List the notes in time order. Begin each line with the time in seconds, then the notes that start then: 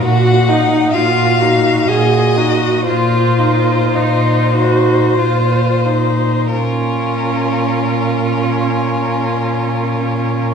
0.02 A#2 F#4 F#5
0.49 D#4
0.92 A#2 F4 F#4 F5
1.41 D#4 F#4
1.87 A#2 F#4 G#4 D#5
2.37 D#4 F#4
2.87 A#2 F4 C5
3.39 D#4
3.95 A#2 D#4 F4
4.54 D#4 F#4
5.18 A#2 F4
5.85 D#4
6.53 A#2 C#4 F4 A#4